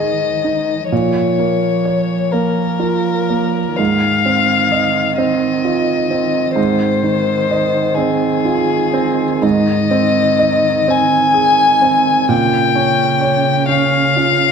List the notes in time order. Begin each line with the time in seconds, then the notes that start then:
Already playing: G#2 D#3 D#4 C5 D#5
0.00 G#4
0.44 D#4
0.89 A#2 F3 C#5
1.39 A#3
1.85 C#5
2.32 A#3 A#4
2.79 F4
3.30 A#3
3.76 G#2 D#3 F5
4.25 C4
4.72 D#5
5.17 C4 D#5
5.65 F4
6.11 C4
6.56 G#2 D#3 C5
7.03 D#3
7.51 D#5
7.95 C4 G#4
8.45 F4
8.93 C4
9.42 G#2 D#5
9.91 C4
10.39 D#5
10.88 C4 G#5
11.34 G#4
11.82 C4
12.29 A#2 C#3 G5
12.75 C#4
13.21 C#5
13.68 C#4 F5
14.16 F4